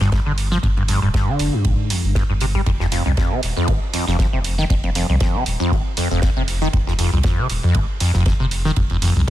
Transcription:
0.01 G1 G2, snare
0.12 G2, kick, snare, ride
0.26 G1 D3
0.38 open hi-hat, ride
0.52 F3, snare
0.63 G1 G2, kick, ride
0.77 G2, ride
0.88 G2, open hi-hat, ride
1.02 D1 G2
1.14 G2, kick, snare, ride
1.28 D3
1.39 F1, open hi-hat, ride
1.53 G2
1.65 A#1 G#2, kick, ride
1.90 F2, open hi-hat, ride
2.04 G1 G2
2.15 G2, kick, snare, ride
2.30 G1 G2
2.40 C3, open hi-hat, ride
2.55 G3, kick
2.66 F1 F2, kick, ride
2.80 F2, snare
2.92 F2, open hi-hat, ride
3.06 C2 F2
3.17 F2, kick, snare, ride
3.31 C3
3.43 D#1, open hi-hat, ride
3.57 F2
3.68 G#1 G2, kick, ride
3.93 F2, open hi-hat, ride
4.07 F1 F2, snare
4.19 kick, snare, ride
4.33 F1 C3
4.44 open hi-hat, ride
4.58 D#3, snare
4.70 F1 F2, kick, ride
4.84 F2, ride
4.95 F2, open hi-hat, ride
5.09 C2 F2
5.20 F2, kick, snare, ride
5.35 C3
5.46 D#1, open hi-hat, ride
5.60 F2
5.72 G#1 G2, kick, ride
5.97 F2, open hi-hat, ride
6.11 F1 F2
6.22 kick, snare, ride
6.36 F1 C3
6.48 open hi-hat, ride
6.62 D#3
6.73 F1 F2, kick, ride
6.87 F2, snare
6.99 F2, open hi-hat, ride
7.13 C2 F2
7.23 F2, kick, snare, ride
7.38 C3
7.50 D#1, open hi-hat, ride
7.63 F2
7.74 G#1 G2, kick, ride
8.00 F2, open hi-hat, ride
8.14 F1 F2, snare
8.26 kick, snare, ride
8.40 F1 C3
8.51 open hi-hat, ride
8.65 D#3, snare
8.76 F1 F2, kick, ride
8.90 F2, ride
9.02 F2, open hi-hat, ride
9.16 C2 F2

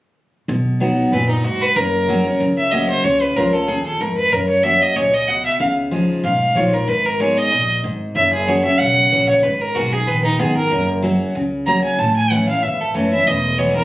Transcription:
0.48 B1 B2
0.80 F#3 B3 D#4 F#4
1.12 F#1 A#2 B4
1.30 D#4
1.44 G#2 F#4
1.61 B4
1.76 F#1 F#2 A#4
2.08 F#3 A#3 C#4 F#4
2.26 C#4 F#4
2.40 C#2 C#3
2.57 E5
2.71 F#3 A#3 C#4 F#4 D#5
2.89 C5
3.04 C#2 C#3 C#5
3.22 B4
3.36 C#2 F3 G#3 C#4 F4 A#4
3.53 C#4 F4 A4
3.68 D#2 A#2 G#4
3.86 A4
4.00 F2 G#2 A#4
4.18 B4
4.32 F#2 A#4
4.49 C#5
4.63 F#3 A#3 C#4 F#4 E5
4.81 D#5
4.96 C#2 A#2 C#5
5.14 D#5
5.28 B2 F#5
5.46 E5
5.60 C#2 C#3 F5
5.91 F3 G#3 D#4 F4
6.24 B1 G#2 F5
6.55 A#1 F3 G#3 D#4 F4 C#5
6.73 D#4 F4 A#4
6.88 G#1 G#2 B4
7.05 A#4
7.20 G#3 B3 D#4 G#4 C#5
7.37 D#5
7.51 A#1 A#2
7.84 G#1 G#2
8.15 F#1 F#2 E5
8.33 G#4
8.47 E3 A#3 C#4 F#4 C#5
8.65 C#4 F#4 E5
8.79 B1 C#3 F#5
9.11 A#1 E3 A#3 C#4 F#4
9.29 C#5
9.43 G#1 G#2 B4
9.61 A#4
9.75 B1 G#3 B3 D#4 F#4 G#4
9.92 D#4 G#4
10.07 A#1 D#3 B4
10.24 D#4
10.39 G#1 G#3 B3 D#4 G#4
10.56 D#4 G#4 A#4
10.71 F#1 F#2
11.02 F#3 A#3 C#4 F#4
11.35 C#2 C#3
11.67 F#3 A#3 C#4 F#4 A#5
11.84 G#5
11.98 A1 A2 A5
12.16 G#5
12.30 E3 A3 C#4 E4 F#5
12.48 C#4 E4 F5
12.62 G#1 E2 E5
12.81 A4
12.94 F#1 E3 A3 C#4 E4 C#5
13.12 C#4 E4 E5
13.26 E1 E2 D#5
13.58 E3 G#3 B3 E4 C#5
13.76 B3 E4 A#4

